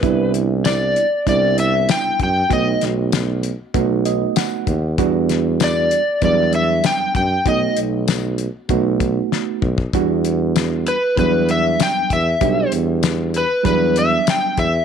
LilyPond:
<<
  \new Staff \with { instrumentName = "Electric slide guitar" } { \time 4/4 \key e \minor \tempo 4 = 97 b'8 r8 d''4 d''8 e''8 g''8 g''8 | dis''8 r2. r8 | r4 d''4 d''8 e''8 g''8 g''8 | dis''8 r2. r8 |
r4. b'8 b'8 e''8 g''8 e''8~ | e''8 r4 b'8 b'8 e''8 g''8 e''8 | }
  \new Staff \with { instrumentName = "Reed electric piano" } { \time 4/4 \key e \minor r1 | r2 r8 dis''8 fis''4 | r1 | r1 |
r1 | r1 | }
  \new Staff \with { instrumentName = "Reed electric piano" } { \time 4/4 \key e \minor <g b d' e'>4. r8 <g b d' e'>4. r8 | <a b dis' fis'>4. r8 <a b dis' fis'>4. r8 | <g b d' fis'>4. r8 <fis g b d'>4. r8 | <a b dis' fis'>4. r8 <a b dis' fis'>4. r8 |
<g b d' fis'>4. r8 <fis g b d'>4. r8 | <g b d' g'>4. r8 <fis g b d'>4. r8 | }
  \new Staff \with { instrumentName = "Tuba" } { \clef bass \time 4/4 \key e \minor c,2 c,4~ c,16 c,16 fis,8 | b,,8 b,,4. b,,4 r8 dis,8 | e,2 e,4~ e,16 e,16 fis,8 | b,,8 b,,4. b,,4 r8 b,,8 |
e,2 e,4~ e,16 e,16 e,8 | b,,8 e,4. e,4 r8 e,8 | }
  \new DrumStaff \with { instrumentName = "Drums" } \drummode { \time 4/4 <hh bd>8 hh8 <hh sn tamb>8 hh8 <hh bd>8 hh8 <hh sn tamb>8 <hh bd>8 | <hh bd>8 <hh sn>8 <hh sn tamb>8 hh8 <hh bd>8 hh8 <hh sn tamb>8 <hh bd>8 | <hh bd>8 <hh sn>8 <hh sn tamb>8 hh8 <hh bd>8 hh8 <hh sn tamb>8 <hh bd>8 | <hh bd>8 hh8 <hh sn tamb>8 hh8 <hh bd>8 <hh bd>8 sn8 bd16 bd16 |
<hh bd>8 hh8 <hh sn tamb>8 hh8 <hh bd>8 hh8 <hh sn tamb>8 <hh bd>8 | <hh bd>8 hh8 <hh sn tamb>8 hh8 <hh bd>8 hh8 <hh sn tamb>8 <hh bd>8 | }
>>